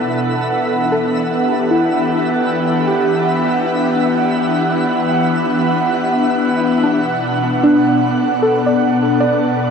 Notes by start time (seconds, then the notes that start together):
Already playing: B2 E3 B3 D4 E4 A4 E5 F#5
0.55 E3
0.92 A4
0.99 G4
1.71 E4
2.87 G4
6.84 B2 D4
7.63 D4
7.89 A4
8.42 A4
8.66 D5
9.20 D5